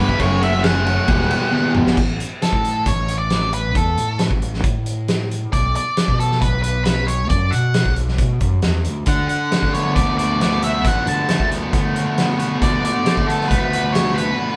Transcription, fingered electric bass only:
0.09 0.19 G1 medium
0.20 0.98 F#1 medium
1.09 1.28 E1 loud
1.76 1.85 E1 medium
1.86 1.96 G1 medium
1.97 2.17 A1 medium
2.53 2.88 A2 medium
2.87 3.75 A1 loud
3.75 3.95 E2 medium
3.98 4.27 A2 medium
4.31 4.60 A1 medium
4.64 5.42 A2 medium
5.54 5.73 B1 medium
6.09 6.44 B2 medium
6.42 7.31 B1 loud
7.31 7.50 F#2 medium
7.53 7.82 B2 medium
7.86 8.15 B1 loud
8.18 8.38 B2 medium
8.41 8.61 F#2 medium
8.64 8.84 E2 medium
8.86 9.06 D2 medium
9.07 9.27 D2 medium
9.63 9.98 D3 medium
9.96 10.85 D2 loud
10.85 11.05 A1 medium
11.07 11.36 D3 medium
11.40 11.69 D2 medium
11.74 12.51 D3 medium
12.62 12.81 D2 medium
13.18 13.53 D3 medium
13.51 14.28 D2 loud

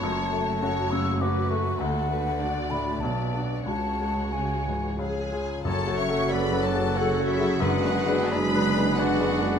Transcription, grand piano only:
0.03 1.76 F#2 medium
0.33 0.80 A3 medium
0.62 0.89 C#4 soft
0.62 0.89 F#4 medium
0.92 1.39 C#3 medium
1.21 1.48 C#4 medium
1.21 1.48 F#4 medium
1.50 1.80 A3 medium
1.81 2.99 D2 medium
2.09 2.59 A3 soft
2.40 2.68 D4 soft
2.40 2.68 F#4 soft
2.71 3.03 A2 soft
3.03 3.65 B1 medium
3.34 3.63 D4 soft
3.34 3.64 F#4 soft
3.66 4.95 C#2 soft
4.00 4.54 G#3 soft
4.35 4.64 F#4 soft
4.68 5.00 G#2 soft
4.99 5.63 C#2 soft
5.31 5.61 F4 soft
5.31 5.62 G#4 soft
5.65 5.86 F#2 medium
5.87 6.07 F#3 soft
5.87 6.07 F#4 soft
5.87 6.07 A4 soft
6.09 6.29 F#3 soft
6.09 6.29 F#4 soft
6.09 6.30 A4 medium
6.31 6.50 F#3 soft
6.31 6.51 F#4 soft
6.31 6.52 A4 medium
6.51 6.72 F#3 medium
6.51 6.73 F#4 medium
6.51 6.73 A4 medium
6.74 6.95 F#3 soft
6.74 6.95 F#4 soft
6.74 6.95 A4 medium
6.96 7.16 F#3 medium
6.96 7.16 F#4 medium
6.96 7.16 A4 medium
7.19 7.38 F#3 medium
7.19 7.39 F#4 medium
7.19 7.39 A4 medium
7.40 7.60 F#3 soft
7.40 7.60 F#4 medium
7.40 7.60 A4 medium
7.60 7.83 F#2 medium
7.83 8.06 G#3 soft
7.83 8.06 D4 soft
7.83 8.06 B4 medium
8.07 8.30 G#3 medium
8.07 8.30 D4 medium
8.07 8.30 B4 medium
8.32 8.53 G#3 soft
8.32 8.53 D4 soft
8.32 8.53 B4 soft
8.54 8.75 G#3 medium
8.54 8.75 D4 medium
8.54 8.75 B4 medium
8.77 8.96 G#3 medium
8.77 8.96 D4 medium
8.77 8.97 B4 medium
8.97 9.18 G#3 medium
8.97 9.18 D4 medium
8.97 9.19 B4 medium
9.20 9.39 G#3 medium
9.20 9.40 D4 medium
9.20 9.40 B4 medium
9.41 9.59 G#3 medium
9.41 9.59 D4 medium
9.41 9.59 B4 medium

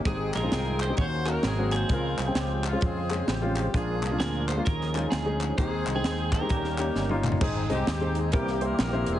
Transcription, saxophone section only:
0.05 0.33 C4 medium
0.05 0.33 D#4 medium
0.05 0.33 G#4 loud
0.34 0.94 C4 medium
0.34 0.94 D#4 medium
0.34 0.94 G#4 medium
0.97 1.40 F#4 medium
0.97 1.27 C5 loud
1.28 1.44 A#4 loud
1.44 1.87 C4 medium
1.44 1.87 D#4 medium
1.44 1.73 G#4 medium
1.74 1.90 C5 loud
1.90 2.65 F4 medium
1.90 2.19 A#4 loud
2.20 2.37 G#4 medium
2.38 2.65 G4 medium
2.66 2.82 F4 medium
2.83 3.28 C4 medium
2.83 3.70 F4 medium
2.83 3.29 G#4 medium
3.29 3.71 C4 medium
3.29 3.75 G4 medium
3.75 4.62 D4 medium
3.75 4.48 F4 medium
3.75 4.21 G#4 loud
4.22 4.49 A#4 medium
4.49 5.37 C#4 medium
4.49 5.37 F4 medium
4.49 5.36 G#4 medium
5.58 6.46 C4 medium
5.58 6.46 D#4 medium
5.58 6.46 G#4 loud
6.50 7.38 A#3 medium
6.50 7.38 C#4 medium
6.50 7.20 G4 medium
7.42 7.70 C4 medium
7.42 7.70 D#4 medium
7.42 7.68 G#4 loud
7.71 8.30 C4 medium
7.71 8.30 D#4 medium
7.71 8.17 G4 medium
8.17 8.34 G#4 medium
8.33 9.19 A#3 medium
8.33 9.19 E4 medium
8.33 8.62 G4 loud
8.63 8.80 A#4 loud
8.82 9.07 A#4 loud
9.09 9.19 C4 medium
9.09 9.19 F4 medium
9.09 9.19 G#4 loud

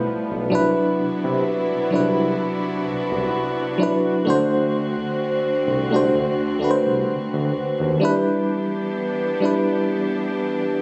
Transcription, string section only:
0.00 0.51 F3 medium
0.00 0.48 G3 medium
0.00 4.22 B3 medium
0.51 4.23 C3 medium
0.51 4.23 D4 medium
0.51 4.23 E4 medium
0.51 7.97 F#4 medium
4.26 7.98 D3 medium
4.26 7.98 A3 medium
4.26 7.98 C4 medium
8.01 10.82 E3 medium
8.01 10.82 B3 medium
8.01 10.82 D4 medium
8.01 10.82 G4 medium

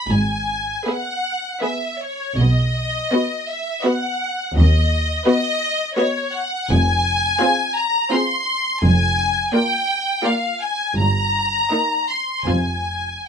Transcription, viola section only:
0.86 1.43 B3 medium
0.86 1.43 G#4 medium
1.62 2.19 B3 medium
1.62 2.19 G#4 medium
3.13 3.66 B3 medium
3.13 3.66 F#4 medium
3.84 4.37 B3 medium
3.84 4.38 F#4 medium
5.27 5.79 B3 medium
5.27 5.79 F#4 medium
5.97 6.51 B3 medium
5.97 6.51 F#4 medium
7.41 7.94 C4 medium
7.41 7.94 F4 medium
8.12 8.64 C4 medium
8.12 8.64 F4 medium
9.53 10.06 A#3 medium
9.53 10.06 F4 medium
10.24 10.78 A#3 medium
10.24 10.78 F4 medium
11.72 12.28 A#3 medium
11.72 12.28 D#4 medium
12.47 13.08 C4 soft
12.47 13.08 F4 soft

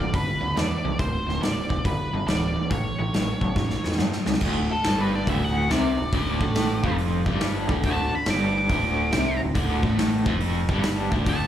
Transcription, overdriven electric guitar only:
0.00 0.13 G2 medium
0.00 0.13 E3 medium
0.14 0.39 G2 medium
0.14 0.39 D3 medium
0.42 0.55 G2 medium
0.42 0.55 D3 medium
0.56 0.82 G2 medium
0.56 0.82 E3 medium
0.85 0.98 G2 medium
0.85 0.99 E3 medium
1.00 1.25 D2 medium
1.00 1.25 A2 medium
1.27 1.40 D2 medium
1.27 1.41 A2 medium
1.41 1.67 D2 medium
1.41 1.67 B2 medium
1.70 1.83 D2 medium
1.70 1.84 B2 medium
1.85 2.10 G2 medium
1.85 2.11 D3 medium
2.14 2.26 G2 medium
2.14 2.27 D3 medium
2.27 2.53 G2 medium
2.27 2.53 E3 medium
2.56 2.69 G2 medium
2.56 2.70 E3 medium
2.70 2.96 A2 medium
2.70 2.96 E3 loud
2.99 3.12 A2 medium
2.99 3.12 E3 medium
3.14 3.39 A2 medium
3.14 3.39 F#3 medium
3.41 3.55 A2 medium
3.41 3.55 F#3 medium
3.56 3.82 A2 medium
3.56 3.82 E3 medium
3.85 3.97 A2 medium
3.85 3.98 E3 medium
3.98 4.24 A2 medium
3.98 4.25 F#3 medium
4.27 4.41 A2 medium
4.27 4.41 F#3 medium
4.42 4.69 D2 medium
4.42 4.70 D3 loud
4.70 muted overdriven electric guitar stroke medium
4.85 5.27 G2 medium
4.85 5.28 G3 medium
5.28 5.69 D2 medium
5.28 5.70 D3 medium
5.70 5.97 C3 medium
5.70 5.98 C4 loud
5.98 6.10 D2 medium
6.13 6.40 D2 medium
6.13 6.41 D3 medium
6.41 6.83 A2 medium
6.41 6.84 A3 medium
6.83 7.26 F2 medium
6.83 7.26 F3 medium
7.26 7.68 G2 medium
7.26 7.69 G3 loud
7.69 7.83 D2 medium
7.69 7.84 D3 medium
7.84 8.10 D2 medium
7.84 8.12 D3 loud
8.11 muted overdriven electric guitar stroke medium
8.27 8.69 G2 medium
8.27 8.70 G3 loud
8.70 9.12 D2 medium
8.70 9.13 D3 medium
9.13 9.40 C3 medium
9.13 9.40 C4 medium
9.40 9.53 D2 medium
9.55 9.83 D2 medium
9.55 9.83 D3 loud
9.83 10.26 A2 medium
9.83 10.26 A3 medium
10.26 10.68 F2 medium
10.26 10.69 F3 loud
10.69 11.11 G2 loud
10.69 11.12 G3 loud
11.12 11.25 D2 medium
11.12 11.27 D3 medium
11.27 11.47 D2 medium
11.27 11.47 D3 loud

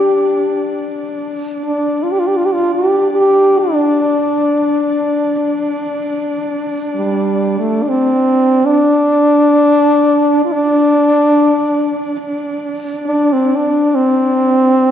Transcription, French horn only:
0.00 0.87 G4 medium
1.65 2.05 D4 medium
2.03 2.13 F4 medium
2.12 2.21 G4 medium
2.20 2.29 F4 medium
2.27 2.39 G4 medium
2.37 2.47 F4 medium
2.45 2.55 G4 medium
2.54 2.74 F4 medium
2.75 3.08 G4 medium
3.13 3.61 G4 medium
3.59 6.06 D4 medium
6.95 7.56 G3 medium
7.59 7.84 A3 medium
7.83 7.91 D4 medium
7.90 8.67 C4 medium
8.66 10.45 D4 medium
10.46 10.54 F4 medium
10.53 12.26 D4 medium
13.07 13.34 D4 medium
13.33 13.57 C4 medium
13.56 13.97 D4 medium
13.95 14.91 C4 medium

